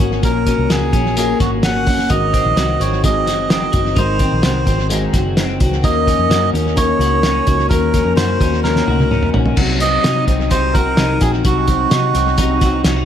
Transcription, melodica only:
0, 0, Header, 1, 2, 480
1, 0, Start_track
1, 0, Tempo, 467290
1, 239, Time_signature, 4, 2, 24, 8
1, 13405, End_track
2, 0, Start_track
2, 0, Title_t, "Melodica"
2, 0, Program_c, 0, 22
2, 247, Note_on_c, 0, 70, 92
2, 718, Note_on_c, 0, 68, 83
2, 737, Note_off_c, 0, 70, 0
2, 1190, Note_off_c, 0, 68, 0
2, 1206, Note_on_c, 0, 68, 90
2, 1425, Note_off_c, 0, 68, 0
2, 1444, Note_on_c, 0, 66, 79
2, 1551, Note_off_c, 0, 66, 0
2, 1689, Note_on_c, 0, 78, 93
2, 2161, Note_on_c, 0, 75, 97
2, 2178, Note_off_c, 0, 78, 0
2, 2882, Note_on_c, 0, 73, 82
2, 2901, Note_off_c, 0, 75, 0
2, 3103, Note_off_c, 0, 73, 0
2, 3131, Note_on_c, 0, 75, 88
2, 3596, Note_off_c, 0, 75, 0
2, 3612, Note_on_c, 0, 75, 81
2, 4084, Note_on_c, 0, 72, 90
2, 4099, Note_off_c, 0, 75, 0
2, 4544, Note_off_c, 0, 72, 0
2, 4560, Note_on_c, 0, 72, 78
2, 5005, Note_off_c, 0, 72, 0
2, 5998, Note_on_c, 0, 75, 105
2, 6677, Note_off_c, 0, 75, 0
2, 6955, Note_on_c, 0, 73, 113
2, 7877, Note_off_c, 0, 73, 0
2, 7901, Note_on_c, 0, 70, 86
2, 8356, Note_off_c, 0, 70, 0
2, 8383, Note_on_c, 0, 72, 88
2, 8838, Note_off_c, 0, 72, 0
2, 8868, Note_on_c, 0, 70, 80
2, 9553, Note_off_c, 0, 70, 0
2, 10076, Note_on_c, 0, 75, 110
2, 10525, Note_off_c, 0, 75, 0
2, 10795, Note_on_c, 0, 72, 103
2, 11027, Note_on_c, 0, 70, 98
2, 11045, Note_off_c, 0, 72, 0
2, 11512, Note_on_c, 0, 68, 84
2, 11529, Note_off_c, 0, 70, 0
2, 11622, Note_off_c, 0, 68, 0
2, 11769, Note_on_c, 0, 66, 83
2, 13164, Note_off_c, 0, 66, 0
2, 13405, End_track
0, 0, End_of_file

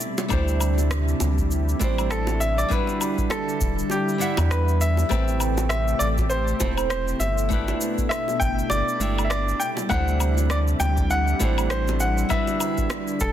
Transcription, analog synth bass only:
0, 0, Header, 1, 2, 480
1, 0, Start_track
1, 0, Tempo, 600000
1, 246, Time_signature, 4, 2, 24, 8
1, 10660, End_track
2, 0, Start_track
2, 0, Title_t, "Analog synth bass"
2, 0, Program_c, 0, 38
2, 248, Note_on_c, 0, 38, 91
2, 914, Note_off_c, 0, 38, 0
2, 969, Note_on_c, 0, 38, 89
2, 1395, Note_off_c, 0, 38, 0
2, 1451, Note_on_c, 0, 33, 84
2, 2116, Note_off_c, 0, 33, 0
2, 2888, Note_on_c, 0, 28, 86
2, 3062, Note_off_c, 0, 28, 0
2, 3503, Note_on_c, 0, 40, 90
2, 4033, Note_off_c, 0, 40, 0
2, 4088, Note_on_c, 0, 33, 93
2, 4755, Note_off_c, 0, 33, 0
2, 4805, Note_on_c, 0, 33, 94
2, 5233, Note_off_c, 0, 33, 0
2, 5288, Note_on_c, 0, 28, 91
2, 5715, Note_off_c, 0, 28, 0
2, 5758, Note_on_c, 0, 31, 83
2, 6190, Note_off_c, 0, 31, 0
2, 6729, Note_on_c, 0, 31, 97
2, 6902, Note_off_c, 0, 31, 0
2, 6965, Note_on_c, 0, 31, 103
2, 7060, Note_off_c, 0, 31, 0
2, 7199, Note_on_c, 0, 31, 91
2, 7630, Note_off_c, 0, 31, 0
2, 7931, Note_on_c, 0, 38, 95
2, 8596, Note_off_c, 0, 38, 0
2, 8641, Note_on_c, 0, 38, 95
2, 9071, Note_off_c, 0, 38, 0
2, 9128, Note_on_c, 0, 33, 94
2, 9795, Note_off_c, 0, 33, 0
2, 10566, Note_on_c, 0, 28, 99
2, 10660, Note_off_c, 0, 28, 0
2, 10660, End_track
0, 0, End_of_file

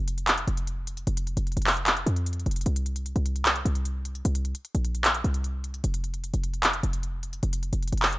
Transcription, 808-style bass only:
0, 0, Header, 1, 2, 480
1, 0, Start_track
1, 0, Tempo, 397351
1, 1294, Time_signature, 4, 2, 24, 8
1, 9892, End_track
2, 0, Start_track
2, 0, Title_t, "808-style bass"
2, 0, Program_c, 0, 38
2, 0, Note_on_c, 0, 29, 104
2, 550, Note_off_c, 0, 29, 0
2, 574, Note_on_c, 0, 29, 106
2, 1265, Note_off_c, 0, 29, 0
2, 1293, Note_on_c, 0, 29, 118
2, 1639, Note_off_c, 0, 29, 0
2, 1654, Note_on_c, 0, 29, 105
2, 1884, Note_off_c, 0, 29, 0
2, 1894, Note_on_c, 0, 29, 101
2, 2470, Note_off_c, 0, 29, 0
2, 2493, Note_on_c, 0, 41, 108
2, 2955, Note_off_c, 0, 41, 0
2, 2974, Note_on_c, 0, 29, 104
2, 3204, Note_off_c, 0, 29, 0
2, 3214, Note_on_c, 0, 36, 114
2, 3790, Note_off_c, 0, 36, 0
2, 3814, Note_on_c, 0, 36, 106
2, 4390, Note_off_c, 0, 36, 0
2, 4414, Note_on_c, 0, 36, 111
2, 5105, Note_off_c, 0, 36, 0
2, 5134, Note_on_c, 0, 36, 121
2, 5480, Note_off_c, 0, 36, 0
2, 5734, Note_on_c, 0, 34, 104
2, 6310, Note_off_c, 0, 34, 0
2, 6334, Note_on_c, 0, 36, 108
2, 7025, Note_off_c, 0, 36, 0
2, 7054, Note_on_c, 0, 29, 114
2, 7630, Note_off_c, 0, 29, 0
2, 7654, Note_on_c, 0, 29, 103
2, 8230, Note_off_c, 0, 29, 0
2, 8254, Note_on_c, 0, 29, 110
2, 8945, Note_off_c, 0, 29, 0
2, 8974, Note_on_c, 0, 29, 118
2, 9320, Note_off_c, 0, 29, 0
2, 9334, Note_on_c, 0, 29, 100
2, 9564, Note_off_c, 0, 29, 0
2, 9574, Note_on_c, 0, 29, 101
2, 9892, Note_off_c, 0, 29, 0
2, 9892, End_track
0, 0, End_of_file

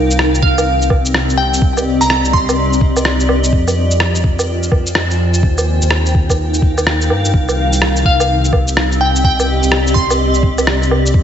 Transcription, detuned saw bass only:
0, 0, Header, 1, 2, 480
1, 0, Start_track
1, 0, Key_signature, -3, "minor"
1, 0, Tempo, 476190
1, 1636, Time_signature, 4, 2, 24, 8
1, 11321, End_track
2, 0, Start_track
2, 0, Title_t, "Detuned saw bass"
2, 0, Program_c, 0, 39
2, 0, Note_on_c, 0, 36, 91
2, 422, Note_off_c, 0, 36, 0
2, 430, Note_on_c, 0, 36, 88
2, 2005, Note_off_c, 0, 36, 0
2, 2029, Note_on_c, 0, 36, 100
2, 2345, Note_off_c, 0, 36, 0
2, 2357, Note_on_c, 0, 36, 87
2, 3545, Note_off_c, 0, 36, 0
2, 3552, Note_on_c, 0, 41, 93
2, 4263, Note_off_c, 0, 41, 0
2, 4277, Note_on_c, 0, 41, 93
2, 5477, Note_on_c, 0, 39, 86
2, 5492, Note_off_c, 0, 41, 0
2, 5848, Note_off_c, 0, 39, 0
2, 5867, Note_on_c, 0, 39, 100
2, 6185, Note_off_c, 0, 39, 0
2, 6195, Note_on_c, 0, 39, 92
2, 7157, Note_on_c, 0, 43, 91
2, 7172, Note_off_c, 0, 39, 0
2, 7295, Note_off_c, 0, 43, 0
2, 7306, Note_on_c, 0, 43, 97
2, 7388, Note_off_c, 0, 43, 0
2, 7397, Note_on_c, 0, 36, 96
2, 8105, Note_off_c, 0, 36, 0
2, 8119, Note_on_c, 0, 36, 92
2, 9689, Note_off_c, 0, 36, 0
2, 9705, Note_on_c, 0, 36, 107
2, 10024, Note_off_c, 0, 36, 0
2, 10033, Note_on_c, 0, 36, 91
2, 11223, Note_off_c, 0, 36, 0
2, 11233, Note_on_c, 0, 41, 95
2, 11321, Note_off_c, 0, 41, 0
2, 11321, End_track
0, 0, End_of_file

